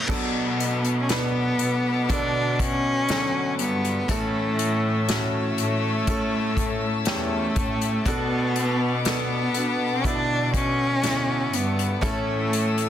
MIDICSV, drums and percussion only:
0, 0, Header, 1, 2, 480
1, 0, Start_track
1, 0, Key_signature, 2, "minor"
1, 0, Tempo, 995025
1, 43, Time_signature, 4, 2, 24, 8
1, 6218, End_track
2, 0, Start_track
2, 0, Title_t, "Drums"
2, 43, Note_on_c, 9, 36, 93
2, 46, Note_on_c, 9, 49, 91
2, 91, Note_off_c, 9, 36, 0
2, 94, Note_off_c, 9, 49, 0
2, 291, Note_on_c, 9, 42, 74
2, 339, Note_off_c, 9, 42, 0
2, 407, Note_on_c, 9, 42, 46
2, 456, Note_off_c, 9, 42, 0
2, 527, Note_on_c, 9, 42, 99
2, 532, Note_on_c, 9, 38, 107
2, 575, Note_off_c, 9, 42, 0
2, 580, Note_off_c, 9, 38, 0
2, 767, Note_on_c, 9, 42, 63
2, 815, Note_off_c, 9, 42, 0
2, 1011, Note_on_c, 9, 36, 79
2, 1012, Note_on_c, 9, 42, 85
2, 1059, Note_off_c, 9, 36, 0
2, 1060, Note_off_c, 9, 42, 0
2, 1251, Note_on_c, 9, 36, 81
2, 1253, Note_on_c, 9, 42, 82
2, 1299, Note_off_c, 9, 36, 0
2, 1301, Note_off_c, 9, 42, 0
2, 1489, Note_on_c, 9, 42, 78
2, 1496, Note_on_c, 9, 38, 108
2, 1537, Note_off_c, 9, 42, 0
2, 1544, Note_off_c, 9, 38, 0
2, 1732, Note_on_c, 9, 42, 74
2, 1780, Note_off_c, 9, 42, 0
2, 1855, Note_on_c, 9, 42, 44
2, 1904, Note_off_c, 9, 42, 0
2, 1972, Note_on_c, 9, 36, 91
2, 1973, Note_on_c, 9, 42, 83
2, 2021, Note_off_c, 9, 36, 0
2, 2021, Note_off_c, 9, 42, 0
2, 2214, Note_on_c, 9, 42, 75
2, 2263, Note_off_c, 9, 42, 0
2, 2453, Note_on_c, 9, 42, 103
2, 2458, Note_on_c, 9, 38, 111
2, 2501, Note_off_c, 9, 42, 0
2, 2507, Note_off_c, 9, 38, 0
2, 2692, Note_on_c, 9, 42, 57
2, 2740, Note_off_c, 9, 42, 0
2, 2930, Note_on_c, 9, 36, 78
2, 2930, Note_on_c, 9, 42, 83
2, 2978, Note_off_c, 9, 36, 0
2, 2978, Note_off_c, 9, 42, 0
2, 3168, Note_on_c, 9, 36, 82
2, 3172, Note_on_c, 9, 42, 78
2, 3217, Note_off_c, 9, 36, 0
2, 3220, Note_off_c, 9, 42, 0
2, 3402, Note_on_c, 9, 42, 83
2, 3410, Note_on_c, 9, 38, 100
2, 3451, Note_off_c, 9, 42, 0
2, 3458, Note_off_c, 9, 38, 0
2, 3647, Note_on_c, 9, 42, 73
2, 3648, Note_on_c, 9, 36, 90
2, 3695, Note_off_c, 9, 42, 0
2, 3696, Note_off_c, 9, 36, 0
2, 3770, Note_on_c, 9, 42, 49
2, 3818, Note_off_c, 9, 42, 0
2, 3887, Note_on_c, 9, 36, 94
2, 3889, Note_on_c, 9, 42, 82
2, 3935, Note_off_c, 9, 36, 0
2, 3937, Note_off_c, 9, 42, 0
2, 4128, Note_on_c, 9, 42, 71
2, 4176, Note_off_c, 9, 42, 0
2, 4367, Note_on_c, 9, 42, 98
2, 4372, Note_on_c, 9, 38, 107
2, 4415, Note_off_c, 9, 42, 0
2, 4420, Note_off_c, 9, 38, 0
2, 4604, Note_on_c, 9, 42, 64
2, 4652, Note_off_c, 9, 42, 0
2, 4845, Note_on_c, 9, 36, 78
2, 4848, Note_on_c, 9, 42, 83
2, 4894, Note_off_c, 9, 36, 0
2, 4896, Note_off_c, 9, 42, 0
2, 5083, Note_on_c, 9, 36, 77
2, 5086, Note_on_c, 9, 42, 80
2, 5131, Note_off_c, 9, 36, 0
2, 5134, Note_off_c, 9, 42, 0
2, 5323, Note_on_c, 9, 42, 87
2, 5331, Note_on_c, 9, 38, 106
2, 5371, Note_off_c, 9, 42, 0
2, 5379, Note_off_c, 9, 38, 0
2, 5564, Note_on_c, 9, 42, 80
2, 5612, Note_off_c, 9, 42, 0
2, 5688, Note_on_c, 9, 42, 47
2, 5736, Note_off_c, 9, 42, 0
2, 5800, Note_on_c, 9, 36, 88
2, 5803, Note_on_c, 9, 42, 81
2, 5848, Note_off_c, 9, 36, 0
2, 5852, Note_off_c, 9, 42, 0
2, 6045, Note_on_c, 9, 42, 69
2, 6093, Note_off_c, 9, 42, 0
2, 6164, Note_on_c, 9, 42, 49
2, 6212, Note_off_c, 9, 42, 0
2, 6218, End_track
0, 0, End_of_file